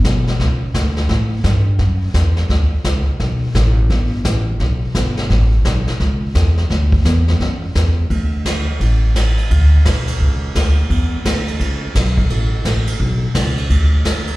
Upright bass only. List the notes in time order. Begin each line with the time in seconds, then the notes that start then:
0.05 B1
0.40 C#2
0.75 D2
1.09 A2
1.44 G2
1.79 F#2
2.14 E2
2.49 D2
2.72 muted upright bass stroke
2.85 C#2
3.07 muted upright bass stroke
3.20 B1
3.55 A1
3.90 G1
4.25 A1
4.60 B1
4.95 G1
5.30 A1
5.65 B1
5.88 muted upright bass stroke
6.00 C#2
6.35 E2
6.70 D2
7.05 E2
7.40 F#2
7.75 E2
8.10 D2
8.80 A1
9.51 D2
9.85 B1
10.20 C#2
10.55 D2
10.90 E2
11.25 D2
11.60 C#2
11.95 B1
12.30 A1
12.65 A1
13.00 B1
13.35 C#2
13.70 D2